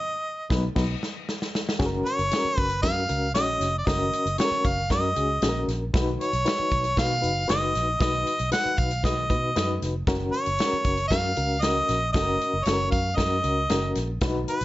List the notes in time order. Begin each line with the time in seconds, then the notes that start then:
Already playing: D#5
0.50 B1 F#3 B3 D#4 B4, kick, snare
0.76 B1 F#3 B3 D#4 B4, kick, snare, crash
1.03 snare
1.29 snare
1.42 snare
1.55 snare
1.69 snare
1.79 F#1 C#4 F#4 G#4, kick, snare, closed hi-hat
1.86 A#4
2.06 C#5, closed hi-hat
2.19 F#1, closed hi-hat
2.31 C#4 F#4 G#4, snare, closed hi-hat
2.38 A#4
2.45 muted fingered electric bass stroke
2.58 F#1 B4, kick, closed hi-hat
2.70 closed hi-hat
2.83 F#2 C#4 F#4 A#4 F5, kick, snare, closed hi-hat
3.09 C#2 C#4 F#4 A#4, closed hi-hat
3.35 A#1 C#4 F#4 C#5 D#5, snare, closed hi-hat
3.60 F1, snare, closed hi-hat
3.78 D5
3.86 F#1 C#4 F#4 A#4 D#5, kick, snare, closed hi-hat
4.13 closed hi-hat
4.26 F#1, closed hi-hat
4.38 C#4 F#4 A4 C#5, snare, closed hi-hat
4.45 A#4
4.51 muted fingered electric bass stroke
4.65 F#1 F5, kick, closed hi-hat
4.90 F#2 C#4 F#4 A#4 D#5, kick, snare, closed hi-hat
5.16 C#2 C#4 F#4 G#4, closed hi-hat
5.42 A#1 C#4 F#4 G#4, snare, closed hi-hat
5.49 A#4
5.68 A#1, snare, closed hi-hat
5.94 B1 D#4 F#4 B4, kick, snare, closed hi-hat
6.21 C#5, closed hi-hat
6.33 B1, closed hi-hat
6.45 D#4 F#4 B4, snare, closed hi-hat
6.59 muted fingered electric bass stroke
6.72 B1, kick, closed hi-hat
6.84 closed hi-hat
6.97 B2 D#4 F#4 B4 F5, kick, snare, closed hi-hat
7.22 F#1 D#4 F#4 B4, closed hi-hat
7.48 F#1 D4 F#4 B4 D#5, snare, closed hi-hat
7.54 D#4
7.75 A#1, snare, closed hi-hat
8.00 B1 D#4 F#4 B4 D#5, kick, snare, closed hi-hat
8.27 closed hi-hat
8.39 B1, closed hi-hat
8.52 D#4 F#4 B4 F#5, snare, closed hi-hat
8.66 muted fingered electric bass stroke
8.78 B1 F5, kick, closed hi-hat
8.91 closed hi-hat
9.03 D#4 F#4 B4 D#5, kick, snare, closed hi-hat
9.30 B2 D#4 F#4 B4, kick, closed hi-hat
9.56 F#2 D#4 F#4 B4, snare, closed hi-hat
9.82 F1, snare, closed hi-hat
10.07 F#1 C#4 F#4 A#4, kick, snare, closed hi-hat
10.32 C#5, closed hi-hat
10.46 F#1, closed hi-hat
10.59 C#4 F#4 G#4, snare, closed hi-hat
10.66 A#4
10.73 muted fingered electric bass stroke
10.85 F#1, kick, closed hi-hat
10.97 closed hi-hat
11.08 F#2 C#4 F#4 A#4 F5, kick, snare, closed hi-hat
11.37 C#2 C#4 F#4 A#4, closed hi-hat
11.62 C#4 F#4 A#4 D#5, snare, closed hi-hat
11.89 A#1, snare, closed hi-hat
12.13 F#1 C#4 F#4 A4 D#5, kick, snare, closed hi-hat
12.22 A#4
12.41 closed hi-hat
12.53 F#1
12.65 F#1 C#4 F#4 A4 C#5, snare, closed hi-hat
12.73 A#4
12.91 F#2 F5, kick, closed hi-hat
13.16 F#2 C#4 F#4 A#4 D#5, kick, snare, closed hi-hat
13.43 C#2 C#4 F#4 A#4, closed hi-hat
13.70 F#1 C#4 F#4 A#4, snare, closed hi-hat
13.95 A#1, snare, closed hi-hat
14.21 B1 D4 F#4 B4, kick, snare, closed hi-hat
14.28 D#4
14.48 B4, closed hi-hat
14.61 B1, closed hi-hat